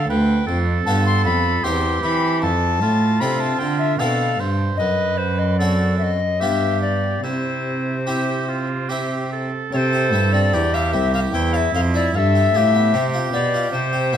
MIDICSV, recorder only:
0, 0, Header, 1, 2, 480
1, 0, Start_track
1, 0, Key_signature, 0, "major"
1, 0, Tempo, 782269
1, 60, Time_signature, 3, 2, 24, 8
1, 2941, Tempo, 811908
1, 4381, Tempo, 831025
1, 5821, Tempo, 801068
1, 8487, End_track
2, 0, Start_track
2, 0, Title_t, "Recorder"
2, 0, Program_c, 0, 74
2, 54, Note_on_c, 0, 79, 105
2, 359, Note_off_c, 0, 79, 0
2, 527, Note_on_c, 0, 81, 105
2, 640, Note_off_c, 0, 81, 0
2, 651, Note_on_c, 0, 84, 109
2, 764, Note_off_c, 0, 84, 0
2, 768, Note_on_c, 0, 83, 106
2, 1005, Note_on_c, 0, 84, 93
2, 1015, Note_off_c, 0, 83, 0
2, 1242, Note_off_c, 0, 84, 0
2, 1246, Note_on_c, 0, 83, 97
2, 1478, Note_off_c, 0, 83, 0
2, 1482, Note_on_c, 0, 81, 115
2, 1965, Note_on_c, 0, 83, 97
2, 1974, Note_off_c, 0, 81, 0
2, 2087, Note_on_c, 0, 81, 97
2, 2096, Note_off_c, 0, 83, 0
2, 2202, Note_on_c, 0, 79, 103
2, 2211, Note_off_c, 0, 81, 0
2, 2327, Note_on_c, 0, 76, 109
2, 2336, Note_off_c, 0, 79, 0
2, 2441, Note_off_c, 0, 76, 0
2, 2445, Note_on_c, 0, 77, 86
2, 2688, Note_off_c, 0, 77, 0
2, 2926, Note_on_c, 0, 75, 98
2, 3167, Note_on_c, 0, 72, 87
2, 3176, Note_off_c, 0, 75, 0
2, 3291, Note_on_c, 0, 75, 83
2, 3300, Note_off_c, 0, 72, 0
2, 3409, Note_on_c, 0, 74, 76
2, 3418, Note_off_c, 0, 75, 0
2, 3641, Note_off_c, 0, 74, 0
2, 3645, Note_on_c, 0, 76, 74
2, 3671, Note_on_c, 0, 75, 80
2, 3677, Note_off_c, 0, 76, 0
2, 3892, Note_on_c, 0, 76, 87
2, 3901, Note_off_c, 0, 75, 0
2, 4133, Note_off_c, 0, 76, 0
2, 4137, Note_on_c, 0, 74, 80
2, 4386, Note_on_c, 0, 72, 78
2, 4394, Note_off_c, 0, 74, 0
2, 5346, Note_off_c, 0, 72, 0
2, 5821, Note_on_c, 0, 73, 109
2, 5847, Note_on_c, 0, 72, 119
2, 5853, Note_off_c, 0, 73, 0
2, 6184, Note_on_c, 0, 74, 108
2, 6193, Note_off_c, 0, 72, 0
2, 6431, Note_on_c, 0, 77, 111
2, 6440, Note_off_c, 0, 74, 0
2, 6543, Note_on_c, 0, 76, 110
2, 6552, Note_off_c, 0, 77, 0
2, 6665, Note_off_c, 0, 76, 0
2, 6671, Note_on_c, 0, 77, 114
2, 6707, Note_off_c, 0, 77, 0
2, 6782, Note_on_c, 0, 79, 102
2, 6905, Note_on_c, 0, 77, 89
2, 6914, Note_off_c, 0, 79, 0
2, 6926, Note_on_c, 0, 76, 97
2, 6932, Note_off_c, 0, 77, 0
2, 7028, Note_off_c, 0, 76, 0
2, 7035, Note_on_c, 0, 77, 106
2, 7071, Note_off_c, 0, 77, 0
2, 7154, Note_on_c, 0, 74, 105
2, 7268, Note_off_c, 0, 74, 0
2, 7271, Note_on_c, 0, 77, 107
2, 7297, Note_on_c, 0, 76, 116
2, 7303, Note_off_c, 0, 77, 0
2, 7813, Note_off_c, 0, 76, 0
2, 7984, Note_on_c, 0, 74, 111
2, 8212, Note_off_c, 0, 74, 0
2, 8215, Note_on_c, 0, 72, 112
2, 8487, Note_off_c, 0, 72, 0
2, 8487, End_track
0, 0, End_of_file